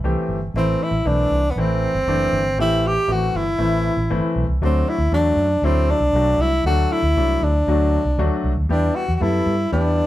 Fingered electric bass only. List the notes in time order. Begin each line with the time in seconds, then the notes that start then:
0.04 C2
0.29 G1
0.54 A1
0.91 A1
1.05 B1
1.30 C2
1.56 A1
1.95 G1
2.07 F#1
2.33 G1
2.57 A1
3.08 A1
3.34 G1
3.58 A1
3.97 A1
4.10 G1
4.36 B1
4.48 C2
4.62 D2
4.98 D2
5.12 E2
5.36 F#2
5.62 D2
6.00 C2
6.13 B1
6.38 C2
6.64 D2
7.02 D2
7.16 C2
7.42 D2
7.67 D2
8.05 C2
8.18 D2
8.44 C2
8.57 D2
8.69 E2
9.08 E2
9.21 F#2
9.46 G2
9.72 E2